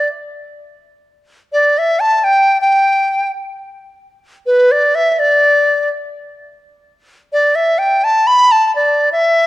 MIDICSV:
0, 0, Header, 1, 2, 480
1, 0, Start_track
1, 0, Tempo, 729040
1, 528, Time_signature, 2, 2, 24, 8
1, 3415, Tempo, 718563
1, 6275, End_track
2, 0, Start_track
2, 0, Title_t, "Dizi"
2, 0, Program_c, 0, 73
2, 1007, Note_on_c, 0, 74, 72
2, 1174, Note_on_c, 0, 76, 72
2, 1184, Note_off_c, 0, 74, 0
2, 1316, Note_on_c, 0, 81, 80
2, 1326, Note_off_c, 0, 76, 0
2, 1438, Note_off_c, 0, 81, 0
2, 1438, Note_on_c, 0, 81, 53
2, 1474, Note_on_c, 0, 79, 82
2, 1484, Note_off_c, 0, 81, 0
2, 1717, Note_off_c, 0, 79, 0
2, 1721, Note_on_c, 0, 79, 73
2, 2180, Note_off_c, 0, 79, 0
2, 2938, Note_on_c, 0, 71, 68
2, 3104, Note_on_c, 0, 74, 80
2, 3114, Note_off_c, 0, 71, 0
2, 3259, Note_on_c, 0, 76, 87
2, 3269, Note_off_c, 0, 74, 0
2, 3370, Note_off_c, 0, 76, 0
2, 3370, Note_on_c, 0, 76, 53
2, 3419, Note_on_c, 0, 74, 77
2, 3429, Note_off_c, 0, 76, 0
2, 3894, Note_off_c, 0, 74, 0
2, 4846, Note_on_c, 0, 74, 73
2, 4996, Note_on_c, 0, 76, 73
2, 5006, Note_off_c, 0, 74, 0
2, 5150, Note_on_c, 0, 79, 80
2, 5160, Note_off_c, 0, 76, 0
2, 5322, Note_on_c, 0, 81, 87
2, 5332, Note_off_c, 0, 79, 0
2, 5475, Note_on_c, 0, 83, 94
2, 5485, Note_off_c, 0, 81, 0
2, 5639, Note_on_c, 0, 81, 84
2, 5649, Note_off_c, 0, 83, 0
2, 5745, Note_off_c, 0, 81, 0
2, 5745, Note_on_c, 0, 81, 53
2, 5794, Note_off_c, 0, 81, 0
2, 5798, Note_on_c, 0, 74, 70
2, 6029, Note_off_c, 0, 74, 0
2, 6045, Note_on_c, 0, 76, 82
2, 6275, Note_off_c, 0, 76, 0
2, 6275, End_track
0, 0, End_of_file